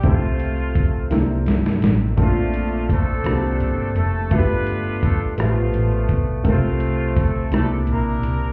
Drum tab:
HH |x-x-x-x-x-x-|x-x-x-x-x-x-|x-x-x-x-x-x-|x-x-x-x-x-x-|
SD |------o-ooo-|------r-----|------r-----|------r-----|
BD |o---o-------|o---o-------|o---o-----o-|o---o-------|